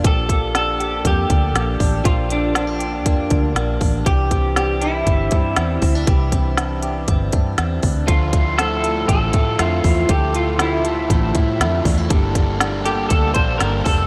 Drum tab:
HH |xxxxxxxo|xxxxxxxo|xxxxxxxo|xxxxxxxo|
SD |--o---o-|--o---o-|--o---o-|--o---o-|
BD |oo--oo-o|o---oo-o|oo--oo-o|oo--oo-o|

HH |xxxxxxxo|xxxxxxxo|xxxxxxxo|
SD |--o---o-|--o---o-|--o---o-|
BD |oo--oo-o|o---oo-o|oo--oo-o|